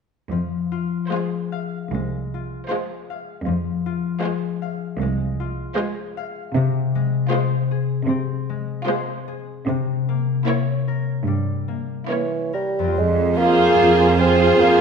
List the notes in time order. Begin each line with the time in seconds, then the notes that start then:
0.30 F2 F3
0.72 F4
1.08 G#3 G#4 C5
1.12 F4
1.52 F5
1.92 C2 G#3
2.34 F4
2.70 G#3 F4 G#4 C5
3.10 F5
3.46 F2 F3
3.86 F4
4.22 G#3 F4 G#4 C5
4.62 F5
5.00 C2 G#3
5.40 F4
5.76 G#3 F4 G#4 C5
6.17 F5
6.55 C3
6.95 G#3
7.31 G#3 F4 C5
7.71 G#4
8.07 C3 C4
8.49 G#3
8.86 G#3 F4 C5
9.28 G#4
9.66 C3
10.09 A#3
10.46 A#3 E4 C#5
10.88 A#4
11.26 G2 G3
11.68 A#3
12.08 E3 A#3 E4 C#5
12.53 G3 A#4
12.79 F2
12.84 C4
12.88 F4
12.92 C5
12.97 F2 G#3
13.36 A#3 F4 G#4 C5
13.78 F2
14.16 C4 F4 G#4 C5
14.58 F2 A#3